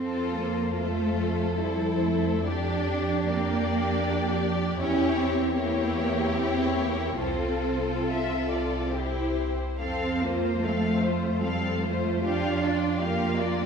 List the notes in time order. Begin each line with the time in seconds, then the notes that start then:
Already playing: F2 C4 F4 A4 C5
0.37 A#3
0.77 A3 F4 A4 C5
1.59 G3 E4
2.04 A3
2.47 D4 G4 D5
3.26 A#3 D4 G4 D5
4.78 E2 C#4 E4 G4 C#5
5.17 C4
5.56 A#3 E4 G4 C#5
6.37 C4
6.77 A#3
7.20 C2 C4 F4 A4 C5
8.07 E5
8.50 D5
8.92 E4 G4 C5
9.79 F2 C4 A4 F5
10.21 A#3 F4 C5
10.63 A3 C4 A4 F5
11.01 F4 C5
11.41 G3 C4 A4 F5
11.83 A3 F4 C5
12.24 D4 F4 G4 F5
12.63 D4 F4 D5
13.00 A#3 F4 G4 F5
13.38 D4 F4 D5